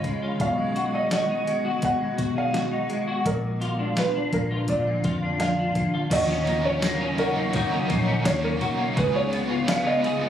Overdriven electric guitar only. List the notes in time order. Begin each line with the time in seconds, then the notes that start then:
6.10 D#3 F#3 C#4 D#4 A#4
6.46 D#4 A#4
6.50 C#4
6.82 D#3 F#3 C#4 D#4 A#4
7.17 D#4 A#4
7.22 C#4
7.52 F#3 C#4 D#4
7.56 A#4
7.88 D#4 A#4
7.92 C#4
8.24 D#3 F#3 C#4 D#4 A#4
8.60 C#4 D#4 A#4
8.96 C#3 G#3 B3 F4 B4
9.31 F4 B4
9.35 B3
9.67 C#3 G#3 B3 F4 B4
10.03 F4 B4
10.07 B3